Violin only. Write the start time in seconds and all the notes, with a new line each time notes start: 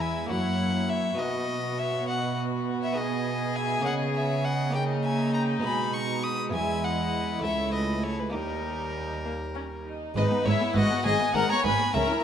0.01 G#5
0.30 F#5
0.90 E5
1.20 D#5
1.79 E5
2.08 F#5
2.83 E5
2.97 D#5
3.56 G#5
3.86 F#5
4.15 E5
4.45 F#5
4.75 G5
5.04 G#5
5.34 A#5
5.64 B5
5.94 C#6
6.24 D#6
6.54 G#5
6.84 F#5
7.44 E5
7.74 D#5
8.04 C#5
8.19 B4
8.34 A#4
10.16 B4
10.45 C#5
10.75 D#5
11.05 D#5
11.35 F#5
11.50 A#5
11.64 G#5
11.94 E5